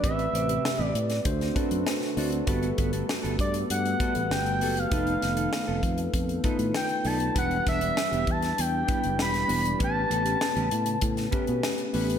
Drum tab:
HH |xxxx--xxxxxx--ox|xxxx-xxxxxxx-xox|xxxx--xxxxxx-xox|xxxx-xxxx-xx-xox|
SD |----o--o-o--oo--|----o-------o---|--o-o-------o---|--o-o--o----oo--|
BD |o-------o-o-----|o-o---o---o-----|o-----o-o-o-----|o-o---o---o-----|

HH |x-xx-xxxxxxx-xox|
SD |----o----o--o---|
BD |o-------o-o-----|